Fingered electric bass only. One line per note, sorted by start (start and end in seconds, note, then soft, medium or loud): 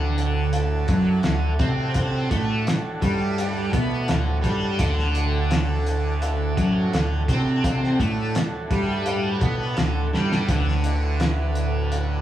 0.00 0.85 D2 loud
0.88 1.22 F#2 medium
1.25 1.58 D2 medium
1.60 2.27 C3 medium
2.31 2.64 A2 medium
3.02 3.69 G2 medium
3.73 4.06 B2 loud
4.09 4.42 D2 medium
4.44 4.77 G2 loud
4.79 6.53 D2 loud
6.57 6.90 F#2 loud
6.92 7.26 D2 medium
7.28 7.95 C3 medium
8.00 8.33 A2 medium
8.70 9.38 G2 medium
9.41 9.74 B2 loud
9.77 10.10 D2 medium
10.13 10.46 G2 loud
10.48 12.21 D2 loud